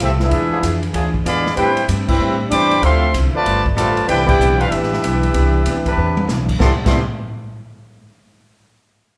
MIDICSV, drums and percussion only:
0, 0, Header, 1, 2, 480
1, 0, Start_track
1, 0, Key_signature, 0, "major"
1, 0, Tempo, 314301
1, 481, Time_signature, 4, 2, 24, 8
1, 14014, End_track
2, 0, Start_track
2, 0, Title_t, "Drums"
2, 1, Note_on_c, 9, 36, 25
2, 1, Note_on_c, 9, 44, 67
2, 1, Note_on_c, 9, 51, 88
2, 154, Note_off_c, 9, 36, 0
2, 154, Note_off_c, 9, 44, 0
2, 154, Note_off_c, 9, 51, 0
2, 300, Note_on_c, 9, 38, 52
2, 453, Note_off_c, 9, 38, 0
2, 477, Note_on_c, 9, 51, 71
2, 478, Note_on_c, 9, 36, 23
2, 630, Note_off_c, 9, 51, 0
2, 631, Note_off_c, 9, 36, 0
2, 961, Note_on_c, 9, 36, 29
2, 966, Note_on_c, 9, 44, 63
2, 966, Note_on_c, 9, 51, 81
2, 1113, Note_off_c, 9, 36, 0
2, 1118, Note_off_c, 9, 44, 0
2, 1118, Note_off_c, 9, 51, 0
2, 1263, Note_on_c, 9, 51, 48
2, 1415, Note_off_c, 9, 51, 0
2, 1436, Note_on_c, 9, 51, 78
2, 1440, Note_on_c, 9, 36, 26
2, 1589, Note_off_c, 9, 51, 0
2, 1592, Note_off_c, 9, 36, 0
2, 1745, Note_on_c, 9, 36, 69
2, 1897, Note_off_c, 9, 36, 0
2, 1920, Note_on_c, 9, 36, 27
2, 1925, Note_on_c, 9, 44, 74
2, 1925, Note_on_c, 9, 51, 84
2, 2073, Note_off_c, 9, 36, 0
2, 2078, Note_off_c, 9, 44, 0
2, 2078, Note_off_c, 9, 51, 0
2, 2233, Note_on_c, 9, 38, 45
2, 2386, Note_off_c, 9, 38, 0
2, 2398, Note_on_c, 9, 51, 76
2, 2400, Note_on_c, 9, 36, 28
2, 2550, Note_off_c, 9, 51, 0
2, 2553, Note_off_c, 9, 36, 0
2, 2700, Note_on_c, 9, 51, 57
2, 2853, Note_off_c, 9, 51, 0
2, 2880, Note_on_c, 9, 36, 23
2, 2881, Note_on_c, 9, 44, 63
2, 2881, Note_on_c, 9, 51, 81
2, 3033, Note_off_c, 9, 36, 0
2, 3033, Note_off_c, 9, 44, 0
2, 3033, Note_off_c, 9, 51, 0
2, 3183, Note_on_c, 9, 49, 88
2, 3186, Note_on_c, 9, 36, 105
2, 3336, Note_off_c, 9, 49, 0
2, 3339, Note_off_c, 9, 36, 0
2, 3840, Note_on_c, 9, 44, 69
2, 3840, Note_on_c, 9, 51, 98
2, 3842, Note_on_c, 9, 36, 26
2, 3993, Note_off_c, 9, 44, 0
2, 3993, Note_off_c, 9, 51, 0
2, 3994, Note_off_c, 9, 36, 0
2, 4144, Note_on_c, 9, 51, 54
2, 4296, Note_off_c, 9, 51, 0
2, 4320, Note_on_c, 9, 51, 75
2, 4323, Note_on_c, 9, 36, 27
2, 4473, Note_off_c, 9, 51, 0
2, 4476, Note_off_c, 9, 36, 0
2, 4799, Note_on_c, 9, 44, 70
2, 4799, Note_on_c, 9, 51, 82
2, 4802, Note_on_c, 9, 36, 28
2, 4952, Note_off_c, 9, 44, 0
2, 4952, Note_off_c, 9, 51, 0
2, 4954, Note_off_c, 9, 36, 0
2, 5283, Note_on_c, 9, 51, 77
2, 5284, Note_on_c, 9, 36, 28
2, 5436, Note_off_c, 9, 51, 0
2, 5437, Note_off_c, 9, 36, 0
2, 5588, Note_on_c, 9, 36, 87
2, 5741, Note_off_c, 9, 36, 0
2, 5763, Note_on_c, 9, 36, 31
2, 5770, Note_on_c, 9, 44, 68
2, 5770, Note_on_c, 9, 51, 87
2, 5916, Note_off_c, 9, 36, 0
2, 5922, Note_off_c, 9, 44, 0
2, 5922, Note_off_c, 9, 51, 0
2, 6063, Note_on_c, 9, 51, 54
2, 6216, Note_off_c, 9, 51, 0
2, 6240, Note_on_c, 9, 51, 84
2, 6241, Note_on_c, 9, 36, 26
2, 6393, Note_off_c, 9, 36, 0
2, 6393, Note_off_c, 9, 51, 0
2, 6545, Note_on_c, 9, 49, 89
2, 6547, Note_on_c, 9, 36, 108
2, 6698, Note_off_c, 9, 49, 0
2, 6700, Note_off_c, 9, 36, 0
2, 6731, Note_on_c, 9, 44, 67
2, 6884, Note_off_c, 9, 44, 0
2, 7034, Note_on_c, 9, 51, 53
2, 7186, Note_off_c, 9, 51, 0
2, 7203, Note_on_c, 9, 36, 30
2, 7206, Note_on_c, 9, 51, 73
2, 7356, Note_off_c, 9, 36, 0
2, 7359, Note_off_c, 9, 51, 0
2, 7376, Note_on_c, 9, 38, 35
2, 7529, Note_off_c, 9, 38, 0
2, 7533, Note_on_c, 9, 38, 54
2, 7682, Note_on_c, 9, 36, 24
2, 7685, Note_off_c, 9, 38, 0
2, 7692, Note_on_c, 9, 44, 64
2, 7692, Note_on_c, 9, 51, 81
2, 7835, Note_off_c, 9, 36, 0
2, 7845, Note_off_c, 9, 44, 0
2, 7845, Note_off_c, 9, 51, 0
2, 7988, Note_on_c, 9, 51, 56
2, 8141, Note_off_c, 9, 51, 0
2, 8157, Note_on_c, 9, 36, 26
2, 8158, Note_on_c, 9, 51, 81
2, 8310, Note_off_c, 9, 36, 0
2, 8310, Note_off_c, 9, 51, 0
2, 8637, Note_on_c, 9, 44, 66
2, 8637, Note_on_c, 9, 51, 81
2, 8640, Note_on_c, 9, 36, 27
2, 8790, Note_off_c, 9, 44, 0
2, 8790, Note_off_c, 9, 51, 0
2, 8792, Note_off_c, 9, 36, 0
2, 8944, Note_on_c, 9, 36, 67
2, 8948, Note_on_c, 9, 51, 51
2, 9097, Note_off_c, 9, 36, 0
2, 9100, Note_off_c, 9, 51, 0
2, 9424, Note_on_c, 9, 48, 84
2, 9577, Note_off_c, 9, 48, 0
2, 9602, Note_on_c, 9, 38, 65
2, 9604, Note_on_c, 9, 44, 64
2, 9755, Note_off_c, 9, 38, 0
2, 9756, Note_off_c, 9, 44, 0
2, 9907, Note_on_c, 9, 36, 81
2, 9911, Note_on_c, 9, 49, 86
2, 10060, Note_off_c, 9, 36, 0
2, 10063, Note_off_c, 9, 49, 0
2, 10080, Note_on_c, 9, 38, 92
2, 10081, Note_on_c, 9, 36, 105
2, 10233, Note_off_c, 9, 38, 0
2, 10234, Note_off_c, 9, 36, 0
2, 10474, Note_on_c, 9, 38, 94
2, 10474, Note_on_c, 9, 49, 90
2, 10475, Note_on_c, 9, 36, 103
2, 10627, Note_off_c, 9, 38, 0
2, 10627, Note_off_c, 9, 49, 0
2, 10628, Note_off_c, 9, 36, 0
2, 14014, End_track
0, 0, End_of_file